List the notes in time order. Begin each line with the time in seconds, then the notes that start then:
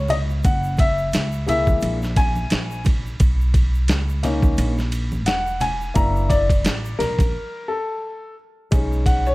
Already playing: C#2 B3 F#4 A#4 C#5
0.08 D#5, ride, low conga, shaker
0.30 shaker
0.44 F#1 F#5, kick, ride, shaker
0.63 shaker
0.77 E5, kick, ride, high conga, shaker
0.98 shaker
1.13 C#2, snare, hi-hat pedal, ride, shaker
1.32 shaker
1.47 G#3 A#3 E4 E5, ride, low conga, shaker
1.67 kick, high conga, shaker
1.81 A#1, ride, shaker
2.02 snare, shaker
2.16 G#5, kick, ride, shaker
2.36 high conga, shaker
2.50 A#1, snare, hi-hat pedal, ride, shaker
2.71 shaker
2.85 kick, ride, low conga, shaker
3.06 shaker
3.20 B1, kick, ride, shaker
3.41 shaker
3.54 kick, ride, high conga, shaker
3.74 shaker
3.88 C#2, snare, hi-hat pedal, ride, shaker
4.09 shaker
4.23 A#3 C#4 D#4, snare, ride, low conga, shaker
4.42 kick, high conga, shaker
4.58 A#1, ride, shaker
4.78 snare, shaker
4.92 ride, shaker
5.12 high conga, shaker
5.26 E1 F#5, snare, hi-hat pedal, ride, shaker
5.47 shaker
5.60 G#5, ride, low conga, shaker
5.81 shaker
5.94 F#1 A#3 D4 E4 A#5, kick, ride, shaker
6.16 shaker
6.29 D5, kick, ride, high conga, shaker
6.50 kick, ride, shaker
6.64 A1, snare, hi-hat pedal, ride, shaker
6.85 shaker
6.99 A#1 A#4, snare, ride, low conga, shaker
7.19 kick, ride, high conga, shaker
7.68 A4
8.71 B1 G#3 C#4 D#4, kick, ride, shaker
8.92 shaker
9.06 F#5, kick, ride, high conga, shaker
9.26 C#5, shaker